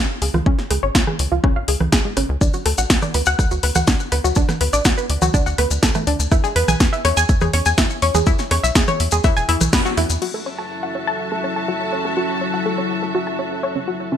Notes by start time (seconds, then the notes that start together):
0.22 C#2 G#4, open hi-hat
0.34 C#2 F4, cross-stick, low conga
0.46 C#2 C#4, kick
0.59 snare
0.71 C#2 G#4, cross-stick, open hi-hat
0.83 G#1 C#5
0.95 C#2 F4, kick, snare
1.07 G#4, cross-stick, low conga
1.19 C#2, open hi-hat
1.32 C#2 F4
1.44 C#2 C#4, kick, cross-stick
1.56 G#1 F5
1.68 C#2 G#4, open hi-hat
1.80 C#2, cross-stick, low conga
1.92 C#2 G#4, kick, snare
2.05 G#3
2.17 G#1 C#4, cross-stick, open hi-hat
2.29 C#2
2.41 D2 D4, kick, maracas
2.53 F#4, maracas
2.66 D2 A4, cross-stick, open hi-hat
2.78 A1 F#5, maracas
2.90 D2, kick, snare, maracas
3.02 D5, cross-stick, low conga, maracas
3.14 D2 B4, open hi-hat
3.26 D2 F#5, maracas
3.39 D2, kick, cross-stick, maracas
3.51 D2 F#4, maracas
3.63 D2 B4, open hi-hat
3.75 D2 F#5, cross-stick, low conga, maracas
3.87 D2 D4, kick, snare, maracas
4.00 maracas
4.12 D2 B4, cross-stick, open hi-hat
4.24 D2 F#4, maracas
4.35 D2 D4, kick, maracas
4.49 cross-stick, snare, low conga, maracas
4.61 D2 B4, open hi-hat
4.73 A1 D5, maracas
4.85 D2 F#4, kick, cross-stick, snare, maracas
4.98 B4, maracas
5.09 D2, open hi-hat
5.22 D2 F#4, cross-stick, low conga, maracas
5.34 D2 D4, kick, maracas
5.46 D2 F#5, maracas
5.58 D2 B4, cross-stick, open hi-hat
5.71 D2, maracas
5.83 D2 A4, kick, snare, maracas
5.95 A3, cross-stick, low conga, maracas
6.07 D2 D4, open hi-hat
6.19 D2, maracas
6.31 E2 E4, kick, cross-stick, maracas
6.44 G#4, maracas
6.56 E2 B4, open hi-hat
6.68 B1 G#5, cross-stick, low conga, maracas
6.80 E2, kick, snare, maracas
6.93 E5, maracas
7.05 E2 C#5, cross-stick, open hi-hat
7.17 E2 G#5, maracas
7.29 E2, kick, maracas
7.41 E2 G#4, cross-stick, low conga, maracas
7.53 E2 C#5, open hi-hat
7.66 E2 G#5, maracas
7.78 E2 E4, kick, cross-stick, snare, maracas
7.90 maracas
8.02 E2 C#5, open hi-hat
8.15 E2 G#4, cross-stick, low conga, maracas
8.26 E2 E4, kick, maracas
8.39 snare, maracas
8.51 E2 C#5, cross-stick, open hi-hat
8.63 B1 E5, maracas
8.75 E2 G#4, kick, snare, maracas
8.88 C#5, cross-stick, low conga, maracas
9.00 E2, open hi-hat
9.11 E2 G#4, maracas
9.24 E2 E4, kick, cross-stick, maracas
9.37 E1 G#5, maracas
9.49 E2 E4, open hi-hat
9.61 B1, cross-stick, low conga, maracas
9.73 E2 B3, kick, snare, maracas
9.85 F#4, maracas
9.97 E2 E4, cross-stick, open hi-hat
10.10 E2, maracas
10.22 F#3 C#4 E4 F#4 A4, crash
10.34 A4
10.38 A5
10.44 C#5 E5
10.59 A5
10.83 F#5
10.95 C#5
11.07 A5
11.32 A4
11.44 C#5
11.56 A5
11.68 F#4
11.93 C#5
12.05 A4
12.17 F#4
12.41 C#5
12.54 F#5
12.66 A4
12.78 C#5
13.03 A4
13.15 F#4
13.27 A5
13.39 C#5
13.63 C#5
13.76 C#4
13.88 F#4
14.12 C#3 G#3 C#4 F4 C#5